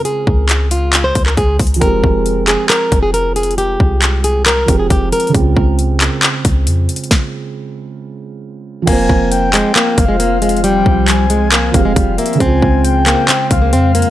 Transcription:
<<
  \new Staff \with { instrumentName = "Soft synth lead" } { \time 4/4 \key f \minor \tempo 4 = 136 r1 | r1 | r1 | r1 |
r1 | aes''4 g''4. f''4. | g''4 aes''4. f''4 e''8 | aes''4 g''4. f''4. | }
  \new Staff \with { instrumentName = "Ambient pad" } { \time 4/4 \key f \minor r1 | r1 | r1 | r1 |
r1 | <f c' f' c''>1~ | <f c' f' c''>1 | <des aes f' c''>1 | }
  \new Staff \with { instrumentName = "Felt piano" } { \time 4/4 \key f \minor <des aes c' f'>1 | <f aes c' g'>1~ | <f aes c' g'>2~ <f aes c' g'>8 <f c' g' aes'>4. | <des aes c' f'>1~ |
<des aes c' f'>1 | <f c' f' c''>1~ | <f c' f' c''>2~ <f c' f' c''>8 <f c' g' aes'>4. | <des aes c' f'>1 | }
  \new Staff \with { instrumentName = "Nylon-string guitar" } { \time 4/4 \key f \minor aes'4. f'8. c''8 bes'16 aes'8 r8 | bes'4. aes'8 bes'8. aes'16 bes'8 aes'8 | g'4. aes'8 bes'8. aes'16 g'8 bes'8 | r1 |
r1 | bes4. aes8 bes8. aes16 bes8 aes8 | g4. aes8 bes8. aes16 g8 bes8 | c'4. bes8 c'8. bes16 c'8 bes8 | }
  \new Staff \with { instrumentName = "808-style bass" } { \clef bass \time 4/4 \key f \minor r8 des,2 des,8 des,8 des,8 | f,,8 f,,4~ f,,16 r8. f,,4.~ | f,,8 c,2 f,,8 f,,8 r8 | des,8 des,4~ des,16 r8. des,8 f,8 r8 |
r1 | f,,8 f,,4~ f,,16 r8. f,,4.~ | f,,8 c,2 f,,8 f,,8 r8 | des,8 des,4~ des,16 r8. des,8 f,8. r16 | }
  \new DrumStaff \with { instrumentName = "Drums" } \drummode { \time 4/4 hh8 bd8 <hc hh>8 hh8 <hc hh>8 <hh bd>16 hc16 \tuplet 3/2 { <hh bd>16 r16 r16 <hh hho bd>16 hh16 hh16 } | <hh bd>8 bd8 hh8 <hc hh>8 <hc hh>8 <hh bd>8 \tuplet 3/2 { hh16 r16 r16 hh16 hh16 hh16 } | hh8 bd8 <hc hh>8 hh8 <hc hh>8 <hh bd>8 \tuplet 3/2 { <hh bd>16 r16 r16 hh16 hh16 hh16 } | <hh bd>8 bd8 hh8 <hc hh>8 <hc hh>8 <hh bd>8 \tuplet 3/2 { hh16 r16 r16 hh16 hh16 hh16 } |
<bd sn>4 r4 r4 r4 | <cymc hh bd>8 bd8 hh8 <hc hh>8 <hc hh>8 <hh bd>8 \tuplet 3/2 { hh16 r16 r16 hh16 hh16 hh16 } | hh8 bd8 <hc hh>8 hh8 <hc hh>8 <hh bd>8 \tuplet 3/2 { <hh bd>16 r16 r16 hh16 hh16 hh16 } | <hh bd>8 bd8 hh8 <hc hh>8 <hc hh>8 <hh bd>8 \tuplet 3/2 { hh16 r16 r16 hh16 hh16 r16 } | }
>>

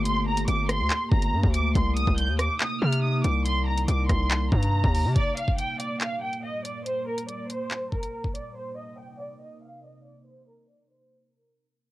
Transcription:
<<
  \new Staff \with { instrumentName = "Violin section" } { \time 4/4 \key g \minor \tempo 4 = 141 c'''8 bes''8 d'''8 c'''4 bes''4 d'''8 | c'''8 ees'''8 g'''8 d'''8 ees'''8 f'''8 ees'''8 d'''8 | c'''8 bes''8 d'''8 c'''4 bes''4. | d''8 f''8 g''8 d''8 f''8 g''8 ees''8 d''8 |
c''8 bes'8 d''8 c''4 bes'4 d''8 | c''8 ees''8 g''8 d''8 ees''8 f''8 ees''8 d''8 | c''8 bes'8 d''8 c''4 bes'4. | }
  \new Staff \with { instrumentName = "Ambient pad" } { \time 4/4 \key g \minor << { <a g'>1 | <c ees'>1~ | <c ees'>1 | <bes, bes>1~ |
<bes, bes>1 | <c ees'>1~ | <c ees'>1 | } \\ { bes1~ | bes1~ | bes1 | g1~ |
g1 | bes1~ | bes1 | } >> }
  \new Staff \with { instrumentName = "808-style bass" } { \clef bass \time 4/4 \key g \minor g,,4 g,,8. d,16 r8 g,,8 g,16 d,8. | c,8. c,8 ees,8 r8. c4 c,8~ | c,4 c,8 c,4 g,8. ees,8 c16 | r1 |
r1 | r1 | r1 | }
  \new DrumStaff \with { instrumentName = "Drums" } \drummode { \time 4/4 hh8. hh16 hh8 <hh ss>8 <hc hh>8 bd16 hh16 r16 bd16 hh8 | <hh bd>8 hh16 bd16 hh8 <hh ss>8 <hc hh>8. hh16 r8 hh8 | hh8. hh16 hh8 <hh bd ss>8 <hc hh>8 bd16 hh16 r16 bd16 hho8 | <hh bd>8 hh16 bd16 hh8 hh8 <hc hh>8. hh16 r8 hh8 |
hh8. hh16 hh8 hh8 <hc hh>8 bd16 hh16 r16 bd16 hh8 | r4 r4 r4 r4 | r4 r4 r4 r4 | }
>>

